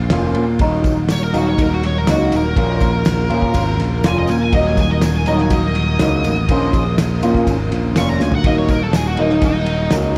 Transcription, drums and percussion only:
0.10 snare, ride
0.35 ride
0.59 kick, ride, tambourine
0.84 kick, ride, tambourine
1.09 snare, ride, tambourine
1.34 ride, tambourine
1.58 kick, ride, tambourine
1.83 snare, ride
2.07 snare, ride, tambourine
2.32 ride, tambourine
2.56 kick, ride, tambourine
2.80 kick, ride, tambourine
3.05 snare, ride, tambourine
3.30 ride
3.42 kick
3.54 kick, ride, tambourine
3.80 snare, ride
4.04 snare, ride, tambourine
4.27 ride, tambourine
4.53 kick, ride, tambourine
4.77 kick, ride, tambourine
5.01 snare, ride, tambourine
5.26 ride, tambourine
5.38 snare
5.50 kick, ride, tambourine
5.75 snare, ride
5.99 snare, ride, tambourine
6.24 ride, tambourine
6.49 kick, ride, tambourine
6.73 kick, ride, tambourine
6.98 snare, ride, tambourine
7.23 ride, tambourine
7.35 kick, snare
7.47 kick, ride, tambourine
7.72 snare, ride
7.96 snare, ride, tambourine
8.20 snare, tambourine
8.32 floor tom
8.44 kick, ride, tambourine
8.68 kick, ride, tambourine
8.93 snare, ride, tambourine
9.17 ride
9.30 snare
9.42 kick, ride, tambourine
9.66 ride
9.91 snare, ride, tambourine

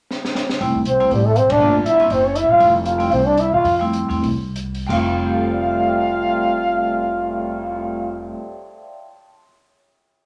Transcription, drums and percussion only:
0.11 snare
0.25 snare
0.35 snare
0.49 snare
0.61 kick, open hi-hat
0.75 kick
0.85 closed hi-hat
1.00 open hi-hat
1.11 kick, open hi-hat
1.36 closed hi-hat
1.50 kick, ride
1.86 closed hi-hat
2.00 open hi-hat
2.10 kick, open hi-hat
2.36 closed hi-hat
2.60 kick, open hi-hat
2.85 closed hi-hat
3.00 open hi-hat
3.11 kick, open hi-hat
3.38 closed hi-hat
3.64 kick, open hi-hat
3.93 closed hi-hat
4.11 open hi-hat
4.23 kick, open hi-hat
4.56 closed hi-hat
4.75 open hi-hat
4.89 kick, crash
5.10 cymbal swell

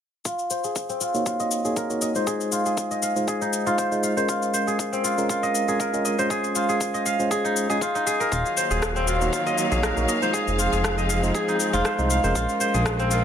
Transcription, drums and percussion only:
0.25 kick, cabasa
0.39 cabasa
0.50 cabasa
0.64 cabasa
0.76 kick, cabasa
0.89 cabasa
1.01 cabasa
1.15 cabasa
1.26 kick, cabasa
1.40 cabasa
1.51 cabasa
1.65 cabasa
1.76 kick, cabasa
1.90 cabasa
2.02 cabasa
2.15 cabasa
2.27 kick, cabasa
2.41 cabasa
2.52 cabasa
2.66 cabasa
2.77 kick, cabasa
2.91 cabasa
3.02 cabasa
3.16 cabasa
3.28 kick, cabasa
3.42 cabasa
3.53 cabasa
3.67 cabasa
3.78 kick, cabasa
3.92 cabasa
4.03 cabasa
4.17 cabasa
4.29 kick, cabasa
4.42 cabasa
4.54 cabasa
4.68 cabasa
4.79 kick, cabasa
4.93 cabasa
5.04 cabasa
5.18 cabasa
5.29 kick, cabasa
5.43 cabasa
5.55 cabasa
5.68 cabasa
5.80 kick, cabasa
5.94 cabasa
6.05 cabasa
6.19 cabasa
6.30 kick, cabasa
6.44 cabasa
6.55 cabasa
6.69 cabasa
6.81 kick, cabasa
6.94 cabasa
7.06 cabasa
7.20 cabasa
7.31 kick, cabasa
7.45 cabasa
7.56 cabasa
7.70 cabasa
7.82 kick, cabasa
7.95 cabasa
8.07 cabasa
8.21 cabasa
8.32 kick, cabasa
8.46 cabasa
8.57 cabasa
8.71 cabasa
8.82 kick, cross-stick, cabasa
8.96 cabasa
9.08 cabasa
9.21 cabasa
9.33 kick, cabasa
9.47 cabasa
9.58 cabasa
9.72 cabasa
9.83 kick, cross-stick, cabasa
9.97 cabasa
10.09 cabasa
10.22 cabasa
10.34 kick, cabasa
10.48 cabasa
10.59 cabasa
10.73 cabasa
10.84 kick, cross-stick, cabasa
10.98 cabasa
11.10 cabasa
11.23 cabasa
11.35 kick, cabasa
11.49 cabasa
11.60 cabasa
11.74 cabasa
11.85 kick, cross-stick, cabasa
11.99 cabasa
12.10 cabasa
12.24 cabasa
12.35 kick, cabasa
12.49 cabasa
12.61 cabasa
12.74 cabasa
12.86 kick, cross-stick, cabasa
12.99 cabasa
13.11 cabasa

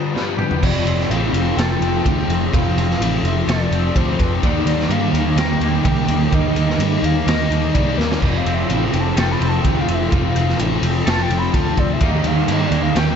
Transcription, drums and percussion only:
0.16 snare
0.39 mid tom
0.51 floor tom
0.63 kick, crash
0.87 ride
1.01 snare
1.11 ride
1.34 ride
1.58 snare, ride
1.82 ride
2.06 kick, ride
2.30 ride
2.54 kick, ride
2.78 ride
2.90 snare
3.02 ride
3.25 ride
3.48 snare, ride
3.72 ride
3.96 kick, ride
4.20 kick, ride
4.43 kick, ride
4.67 ride
4.80 snare
4.90 ride
5.15 ride
5.37 snare, ride
5.61 ride
5.85 kick, ride
6.08 ride
6.32 kick, ride
6.56 ride
6.70 snare
6.80 ride
7.04 ride
7.28 snare, ride
7.52 ride
7.75 kick, ride
8.00 snare
8.12 snare
8.22 kick, crash
8.46 ride
8.70 ride
8.93 ride
9.17 snare, ride
9.42 ride
9.64 kick, ride
9.88 ride
10.12 kick, ride
10.36 ride
10.49 snare
10.59 ride
10.83 ride
11.07 snare, ride
11.30 ride
11.54 kick, ride
11.77 kick, ride
12.00 kick, ride
12.24 ride
12.48 ride
12.72 ride
12.96 snare, ride

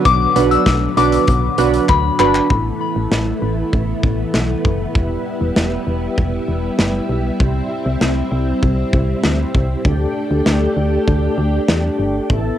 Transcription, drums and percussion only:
0.05 kick, closed hi-hat
0.36 closed hi-hat
0.51 closed hi-hat
0.66 kick, snare, closed hi-hat
0.97 closed hi-hat
1.12 closed hi-hat
1.28 kick, closed hi-hat
1.58 closed hi-hat
1.74 closed hi-hat
1.89 kick, clap
2.20 clap
2.35 clap
2.50 kick
3.12 snare
3.73 kick
4.03 kick
4.34 snare
4.65 kick
4.95 kick
5.56 snare
6.18 kick
6.79 snare
7.40 kick
8.01 snare
8.63 kick
8.93 kick
9.23 snare
9.55 kick
9.85 kick
10.46 snare
11.08 kick
11.69 snare
12.30 kick

